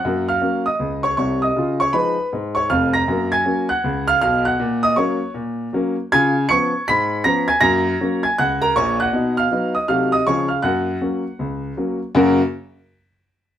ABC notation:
X:1
M:4/4
L:1/8
Q:"Swing" 1/4=159
K:F#
V:1 name="Grand piano"
[ff'] [ee']2 [dd']2 [cc'] [cc'] [dd']- | [dd'] [cc'] [Bb]2 z [cc'] [ee'] [aa']- | [aa'] [gg']2 [ff']2 [ee'] [ee'] [ff']- | [ff'] [dd'] [cc']2 z4 |
[gg']2 [c'c'']2 [bb']2 [aa'] [gg'] | [aa']3 [gg'] [ff'] [Aa] [cc'] [ff']- | [ff'] [ee']2 [dd'] [ee'] [_e_e'] [cc'] [^e^e'] | [ff']6 z2 |
[F,,C,A,CFA] z6 z |]
V:2 name="Grand piano" clef=bass
[F,,A,]2 [F,A,C]2 C,,2 [^B,,,^B,,]2 | [C,E]2 [E,G,D]2 G,,2 [E,,,E,,]2 | [F,,A,]2 [F,A,C]2 C,,2 [B,,,B,,]2 | A,,2 [F,A,C]2 A,,2 [F,A,C]2 |
[C,E]2 [E,B,C]2 G,,2 [E,B,C]2 | [F,,A,]2 [F,A,C]2 C,,2 [A,,,A,,]2 | [B,,D]2 [F,B,D]2 [=C,_G,=A,_E_G]2 [^C,^E,^G,C^E]2 | [F,,A,]2 [F,A,C]2 C,,2 [F,A,C]2 |
z8 |]